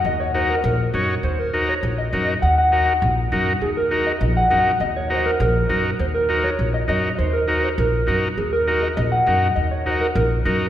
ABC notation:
X:1
M:4/4
L:1/8
Q:1/4=202
K:Ebdor
V:1 name="Clean electric guitar"
e d c B B3 z | c B2 d2 e2 e | g g4 z3 | A B2 e e g3 |
e d c B B3 z | c B2 d2 e e2 | c B2 c B3 z | A B2 e e g3 |
e d c B B3 z |]
V:2 name="Transistor combo organ"
z2 [EGB] z3 [EGd] z | z2 [EGB] z3 [EGB] z | z2 [EGB] z3 [EGB] z | z2 [EGB] z3 [EGB] z |
z2 [EGB] z3 [EGB] z | z2 [EGB] z3 [EGB] z | z2 [EGB] z3 [EGB] z | z2 [EGB] z3 [EGB] z |
z2 [EGB] z3 [EGB] z |]
V:3 name="Upright bass" clef=bass
E,,4 B,,,2 G,,2 | E,,4 B,,,2 G,,2 | E,,4 B,,,2 G,,2 | E,,4 B,,,2 G,,2 |
E,,4 B,,,2 G,,2 | E,,4 B,,,2 G,,2 | E,,4 B,,,2 G,,2 | E,,4 B,,,2 G,,2 |
E,,4 B,,,2 G,,2 |]